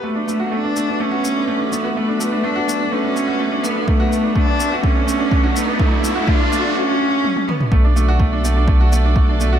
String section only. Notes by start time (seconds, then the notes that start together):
0.04 B3 F#4 A4 B4
7.71 B3 F#4 A4 D5